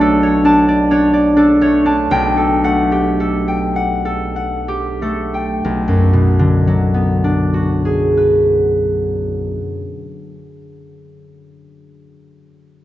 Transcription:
Already playing: B1 A3 C#5 D5 A5
0.01 D4 A4
0.23 C#5
0.45 D4 A5
0.68 D5
0.91 D4 C#5
1.13 D5
1.36 D4 A4
1.61 A3 C#5
1.86 D4 A5
2.11 B1 G5
2.37 A4
2.64 A3 F#5
2.92 G4
3.20 A4
3.48 G5
3.76 F#5
4.05 A4
4.36 F#5
4.68 G4
5.02 A3 A4
5.34 G5
5.65 B1
5.88 F#2
6.13 B2
6.39 D3
6.67 F#3
6.94 B3
7.24 D4
7.54 F#4
7.85 G#4
8.17 B4

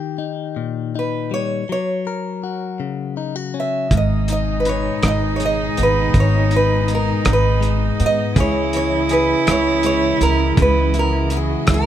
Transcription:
Already playing: D#3 G4
0.18 D#4
0.56 A#2
0.95 D#4 B4
1.31 G3 C#5
1.69 F#3 C#5
2.07 A#4
2.44 F#4
2.80 C#3
3.17 D#4
3.36 F#4
3.54 C#4
3.60 E5
3.91 G#1 G#2 B2 D#3 G#3 D#4 G#4 D#5, kick, closed hi-hat
3.97 D#5
4.28 D#4, closed hi-hat
4.32 D#5
4.60 B4
4.65 B4 C#5, closed hi-hat
5.03 G#1 D#4, cross-stick, closed hi-hat
5.08 D#5
5.36 G#3 C#5, closed hi-hat
5.45 D#5
5.77 G#1 B3, closed hi-hat
5.83 B4
6.14 G#1 G#2, kick, closed hi-hat
6.20 C#5
6.51 D#4, closed hi-hat
6.56 B4
6.88 D#4, closed hi-hat
6.95 A#4
7.25 G#1 D#4, cross-stick, closed hi-hat
7.33 B4
7.61 G#3, closed hi-hat
8.00 G#2 B3, closed hi-hat
8.06 D#5
8.36 C#2 C#3 E3 G#3 E4 G#4, kick, closed hi-hat
8.40 C#5
8.73 E4 C#5, closed hi-hat
9.09 G#4 B4, closed hi-hat
9.47 C#2 E4, cross-stick, closed hi-hat
9.51 C#5
9.83 G#3 C#5, closed hi-hat
10.21 C#2 A#4, closed hi-hat
10.57 C#2 C#3 F#4, kick, closed hi-hat
10.62 B4
10.94 E4, closed hi-hat
10.99 A#4
11.30 E4, closed hi-hat
11.37 G#4
11.67 C#2 E4, kick, cross-stick, closed hi-hat
11.74 A#4

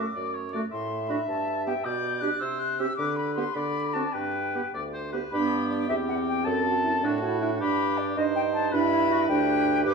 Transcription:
Already playing: D6
0.15 F#2 D5
0.34 C#5
0.53 A3 F#4 D5
0.72 A2 E5 C6
1.09 D4 F#4 B5
1.28 G2 A5
1.66 B3 G4 G5
1.85 B2 D5 G6
2.21 D4 G4 F#6
2.40 C3 C5 E6
2.59 F#6
2.79 C4 G4 E6
2.97 D3 B4 D6
3.16 B5
3.35 B3 G4 C6
3.54 D3 D5 B5
3.93 C4 F#4 A5
4.13 G2 B4 G5
4.54 B3 G4
4.73 D2 D5
4.93 C5
5.12 B3 G4 B4
5.32 G2 B3 D4 G4 B5
5.70 D5
5.89 E2 C4 G4 E5
6.09 F#5
6.28 G5
6.45 F#2 A4 A5
6.66 F#4
6.84 E4
7.02 A2 D4 F#4
7.22 E4 F#4
7.41 D4 E4
7.60 G2 D4 G4 B5
7.98 D5
8.17 G2 D#4 C5 D#5
8.36 G5
8.54 A5
8.72 G2 D4 E4 B4 B5
8.91 E4
9.11 F#4
9.28 D2 D4 G4 G5
9.85 G2 G4 B4 D6

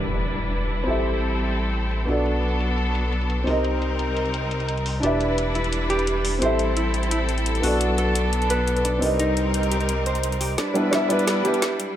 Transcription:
Already playing: E1 G3 D4 D#4 E4 G4 A#4 B4 E5, impact
0.00 closed hi-hat
0.09 closed hi-hat
0.18 closed hi-hat
0.35 closed hi-hat
0.44 closed hi-hat
0.52 closed hi-hat
0.70 open hi-hat
0.84 A1 G3 C4 E4 G4 A4, closed hi-hat
0.89 A4 E5
1.04 closed hi-hat
1.22 closed hi-hat
1.39 closed hi-hat
1.48 closed hi-hat
1.56 closed hi-hat
1.74 closed hi-hat
1.83 closed hi-hat
1.91 closed hi-hat
2.00 closed hi-hat
2.05 B1 F#3 B3 D4 F#4 A4, open hi-hat
2.10 A4 D5
2.26 closed hi-hat
2.43 closed hi-hat
2.60 closed hi-hat
2.78 closed hi-hat
2.87 closed hi-hat
2.95 closed hi-hat
3.12 closed hi-hat
3.21 closed hi-hat
3.30 closed hi-hat
3.44 C2 G3 C4 D#4 G4 A#4, open hi-hat
3.49 A#4 D#5
3.65 closed hi-hat
3.82 closed hi-hat
3.99 closed hi-hat
4.17 closed hi-hat
4.25 closed hi-hat
4.34 closed hi-hat
4.51 closed hi-hat
4.60 closed hi-hat
4.69 closed hi-hat
4.77 closed hi-hat
4.86 open hi-hat
5.00 E1 G3 D4 E4 G4 B4, closed hi-hat
5.05 B4 E5
5.21 closed hi-hat
5.38 closed hi-hat
5.55 E4, closed hi-hat
5.64 closed hi-hat
5.73 closed hi-hat
5.90 G4, closed hi-hat
5.99 closed hi-hat
6.07 closed hi-hat
6.25 open hi-hat
6.39 A1 C4 E4 G4 A4 C5, closed hi-hat
6.44 A4 E5
6.59 closed hi-hat
6.77 E4, closed hi-hat
6.94 closed hi-hat
7.03 closed hi-hat
7.11 E4, closed hi-hat
7.29 closed hi-hat
7.38 closed hi-hat
7.46 closed hi-hat
7.55 closed hi-hat
7.60 B1 F#3 B3 D4 F#4, open hi-hat
7.65 A4 D5
7.81 closed hi-hat
7.98 A4, closed hi-hat
8.15 closed hi-hat
8.33 closed hi-hat
8.42 closed hi-hat
8.50 B4, closed hi-hat
8.68 closed hi-hat
8.77 closed hi-hat
8.85 D4, closed hi-hat
8.99 C2 G3 C4 D#4 G4 A#4, open hi-hat
9.04 A#4 D#5
9.19 D#4, closed hi-hat
9.37 closed hi-hat
9.54 closed hi-hat
9.63 closed hi-hat
9.71 G4, closed hi-hat
9.81 closed hi-hat
9.89 closed hi-hat
10.06 C5, closed hi-hat
10.15 closed hi-hat
10.23 closed hi-hat
10.32 closed hi-hat
10.41 G4, open hi-hat
10.58 G3 D4 E4 B4, snare, closed hi-hat
10.74 G3 B3 D4 E4 B4, closed hi-hat
10.91 G3 B3 D4 E4 E5, snare, closed hi-hat
11.09 G3 B3 D4 E4 B4, closed hi-hat
11.19 closed hi-hat
11.28 snare, closed hi-hat
11.43 G3 B3 D4 E4 G4 B4, closed hi-hat
11.54 closed hi-hat
11.62 snare, closed hi-hat
11.80 closed hi-hat

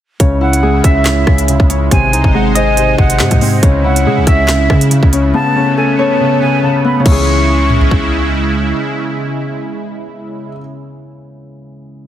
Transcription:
0.20 C#2 C#3 G#3 C#4 E4, kick, closed hi-hat
0.41 C#3 E4 F#5
0.53 closed hi-hat
0.63 G#3 G#4
0.84 C#2 C#4 E5, kick, closed hi-hat
1.05 C#3, snare, clap, closed hi-hat
1.27 C#2 C#3, kick, cross-stick
1.38 closed hi-hat
1.48 C#3, closed hi-hat
1.60 C#2, kick
1.70 C#4, closed hi-hat
1.91 G#1 C3 C4 D#4 C5 G#5, kick, closed hi-hat
2.13 C2 C3 D#4, closed hi-hat
2.24 G#1, kick
2.34 G#3 G#4 F#5
2.55 C4 D#5 G#5, closed hi-hat
2.77 C3, closed hi-hat
2.98 G#1 C3 F#5, kick
3.10 closed hi-hat
3.20 G#2 C3, snare, clap
3.31 G#2, kick, closed hi-hat
3.41 C4, open hi-hat
3.63 C#2 C#3 C#4 E4, kick, closed hi-hat
3.84 C#3 E4 F#5
3.96 closed hi-hat
4.06 C#3 G#3 G#4
4.17 C#2
4.27 C#2 C#4 E5, kick, closed hi-hat
4.48 C#3, snare, clap, closed hi-hat
4.69 C#3, kick, cross-stick
4.81 closed hi-hat
4.91 C#3, closed hi-hat
5.03 C#2, kick
5.13 C#4, closed hi-hat
5.34 C#3 A3 B3 A5
5.56 C#3 C#4
5.77 A3 A4 G#5
5.98 B3 C#5 A5
6.20 C#3
6.41 C#3 G#5
6.63 C#3 A5
6.84 B3 B5
7.00 C#3 C#4
7.04 C#2 C#3 E3 G#3 E4 C#6, kick, crash
7.08 G#3 C#4 G#4
7.70 mid tom
7.81 floor tom
7.91 kick

